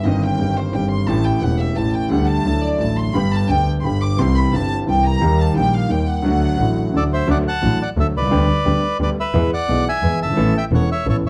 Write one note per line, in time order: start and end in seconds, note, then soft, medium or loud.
0.03 0.38 G1 medium
0.03 0.38 G2 medium
0.03 0.36 D#3 medium
0.03 0.37 G3 medium
0.03 0.38 C4 medium
0.03 0.23 D#5 medium
0.07 0.39 G4 medium
0.23 0.57 G5 medium
0.37 0.72 G1 soft
0.37 0.72 G2 soft
0.37 0.70 D#3 soft
0.37 0.72 G3 soft
0.37 0.72 C4 soft
0.42 0.73 G4 soft
0.57 0.74 C5 medium
0.72 1.06 G1 soft
0.72 1.07 G2 soft
0.72 1.05 D#3 soft
0.72 1.06 G3 soft
0.72 1.07 C4 soft
0.72 0.91 G5 medium
0.76 1.08 G4 soft
0.91 1.07 C6 medium
1.06 1.40 A1 medium
1.06 1.41 A1 medium
1.06 1.40 A2 medium
1.06 1.39 E3 medium
1.06 1.40 A3 medium
1.06 1.41 C#4 soft
1.06 1.41 G4 medium
1.06 1.25 A5 medium
1.25 1.43 G5 medium
1.41 1.75 E1 soft
1.41 1.75 E2 soft
1.41 1.73 E3 soft
1.41 1.75 A3 soft
1.41 1.75 C#4 soft
1.41 1.76 G4 soft
1.41 1.60 F#5 medium
1.60 1.77 E5 medium
1.75 2.09 A1 soft
1.75 2.10 A2 soft
1.75 2.08 E3 soft
1.75 2.09 A3 soft
1.75 2.10 C#4 soft
1.75 1.94 A5 medium
1.79 2.10 G4 soft
1.94 2.11 G5 medium
2.09 2.44 D2 medium
2.09 2.11 D3 medium
2.09 2.42 D3 medium
2.09 2.44 G3 medium
2.09 2.44 A3 medium
2.09 2.45 G4 medium
2.09 2.27 F#5 medium
2.28 2.63 A5 loud
2.44 2.78 D2 soft
2.44 2.79 D2 soft
2.44 2.45 D3 soft
2.44 2.77 D3 soft
2.44 2.78 F#3 soft
2.44 2.79 A3 soft
2.48 2.80 E4 soft
2.63 2.80 D5 medium
2.78 3.13 A1 soft
2.78 3.13 A2 soft
2.78 3.11 D3 soft
2.78 3.13 F#3 soft
2.78 3.14 A3 soft
2.78 2.98 A5 medium
2.82 3.14 E4 soft
2.98 3.15 C6 medium
3.12 3.48 G1 medium
3.12 3.48 G2 medium
3.12 3.46 D3 medium
3.12 3.47 G3 medium
3.12 3.48 B3 medium
3.12 3.33 B5 loud
3.16 3.49 G4 medium
3.33 3.50 A5 medium
3.47 3.82 D2 soft
3.47 3.82 D2 medium
3.47 3.49 D3 soft
3.47 3.81 D3 soft
3.47 3.82 G3 soft
3.47 3.83 B3 soft
3.47 3.83 G4 soft
3.47 3.67 G5 loud
3.80 4.17 G1 soft
3.80 4.17 G1 medium
3.80 4.16 D3 soft
3.80 4.16 G3 soft
3.80 3.84 C6 medium
3.84 4.17 G2 soft
3.84 4.17 B3 soft
3.84 4.18 G4 soft
3.84 4.02 B5 medium
4.02 4.19 D6 medium
4.17 4.51 C2 medium
4.17 4.52 C3 medium
4.17 4.49 E3 medium
4.17 4.51 G3 medium
4.17 4.52 C4 medium
4.17 4.36 C6 loud
4.21 4.52 G4 medium
4.37 4.54 B5 medium
4.51 4.86 G1 soft
4.51 4.86 G1 medium
4.51 4.86 G2 medium
4.51 4.84 E3 soft
4.51 4.85 G3 soft
4.51 4.86 C4 soft
4.51 4.87 G4 soft
4.51 4.71 A5 loud
4.85 5.20 C2 soft
4.85 5.20 C2 medium
4.85 5.20 C3 soft
4.85 5.19 E3 soft
4.85 5.19 G3 soft
4.85 5.20 C4 soft
4.85 5.21 G4 soft
4.85 5.04 G5 medium
5.05 5.39 A#5 loud
5.21 5.54 D#2 medium
5.21 5.52 D#3 medium
5.21 5.54 G3 medium
5.21 5.55 A#3 medium
5.21 5.55 G4 medium
5.40 5.57 A5 medium
5.54 5.89 A#1 medium
5.54 5.89 A#2 medium
5.54 5.86 D#3 soft
5.54 5.88 G3 soft
5.54 5.89 A#3 soft
5.54 5.72 G5 medium
5.58 5.90 G4 soft
5.74 5.91 F5 medium
5.88 6.23 D#2 soft
5.88 6.23 D#2 medium
5.88 6.23 D#3 soft
5.88 6.22 G3 soft
5.88 6.23 A#3 soft
5.88 6.24 G4 soft
5.88 6.08 G5 medium
6.08 7.11 F#5 medium
6.22 6.57 D2 medium
6.22 6.55 D3 medium
6.22 6.56 F#3 medium
6.22 6.57 A3 medium
6.26 6.58 F#4 medium
6.57 6.92 A1 medium
6.57 6.92 A1 soft
6.57 6.92 A2 medium
6.57 6.90 D3 soft
6.57 6.91 F#3 soft
6.57 6.92 A3 soft
6.57 6.93 F#4 soft
6.93 7.26 D2 medium
6.93 7.26 D3 soft
6.93 7.26 F#3 soft
6.93 7.26 A3 soft
6.93 7.26 F#4 soft
6.93 7.03 A4 medium
6.97 7.04 D5 medium
7.13 7.28 C5 medium
7.13 7.30 E5 medium
7.27 7.42 D2 medium
7.27 7.42 D3 medium
7.27 7.42 F#3 medium
7.27 7.42 A3 medium
7.27 7.42 F#4 medium
7.27 7.38 D5 medium
7.31 7.38 F#5 medium
7.48 7.79 F#5 medium
7.48 7.83 A5 loud
7.62 7.77 A1 medium
7.62 7.77 A2 medium
7.62 7.77 D3 medium
7.62 7.77 F#3 soft
7.62 7.77 A3 soft
7.62 7.77 F#4 medium
7.82 7.89 D5 medium
7.82 7.90 F#5 medium
7.96 8.11 D2 medium
7.96 8.11 D3 medium
7.96 8.11 F#3 soft
7.96 8.11 A3 soft
7.96 8.12 F#4 medium
7.96 8.07 A4 medium
7.96 8.07 E5 medium
8.14 8.23 B1 soft
8.14 8.31 C2 medium
8.14 8.97 B4 medium
8.14 8.98 D5 medium
8.22 8.27 C2 medium
8.27 8.31 C#2 medium
8.31 8.46 D2 medium
8.31 8.46 D3 medium
8.31 8.46 G3 medium
8.31 8.46 B3 medium
8.31 8.46 G4 medium
8.65 8.80 D2 medium
8.65 8.80 D3 medium
8.65 8.80 G3 soft
8.65 8.80 B3 soft
8.65 8.80 G4 medium
9.00 9.14 D2 medium
9.00 9.14 D3 medium
9.00 9.14 G3 soft
9.00 9.14 B3 soft
9.00 9.14 G4 soft
9.00 9.10 B4 medium
9.00 9.10 D5 medium
9.20 9.51 B4 medium
9.20 9.51 E5 medium
9.34 9.48 E2 medium
9.34 9.49 E2 medium
9.34 9.48 E3 medium
9.34 9.48 G#3 medium
9.34 9.49 B3 medium
9.34 9.49 G#4 medium
9.54 9.85 D5 medium
9.54 9.88 F#5 loud
9.68 9.83 B1 medium
9.68 9.83 B2 medium
9.68 9.83 E3 soft
9.68 9.83 G#3 soft
9.68 9.83 B3 soft
9.68 9.83 G#4 medium
9.89 10.20 E5 medium
9.89 10.20 G#5 loud
10.03 10.17 E2 medium
10.03 10.18 E2 medium
10.03 10.18 E3 medium
10.03 10.18 G#3 soft
10.03 10.18 B3 soft
10.03 10.18 G#4 medium
10.20 10.29 F#1 soft
10.20 10.37 G1 medium
10.20 10.54 E5 medium
10.20 10.57 A5 medium
10.29 10.33 G1 medium
10.29 10.37 G#1 medium
10.37 10.52 A1 medium
10.37 10.52 A2 loud
10.37 10.52 E3 medium
10.37 10.52 B3 medium
10.37 10.52 C#4 medium
10.37 10.52 A4 medium
10.57 10.65 E5 medium
10.57 10.65 G5 loud
10.71 10.86 E1 medium
10.71 10.86 E2 medium
10.71 10.86 E3 soft
10.71 10.86 B3 soft
10.71 10.86 C#4 soft
10.71 10.86 A4 medium
10.71 10.90 C#5 medium
10.71 10.90 F#5 medium
10.92 11.07 C#5 medium
10.92 11.07 E5 medium
11.06 11.21 A1 medium
11.06 11.21 A2 medium
11.06 11.21 E3 soft
11.06 11.21 B3 soft
11.06 11.21 C#4 soft
11.06 11.21 A4 soft
11.06 11.17 A4 medium
11.06 11.16 C#5 medium
11.24 11.29 F1 medium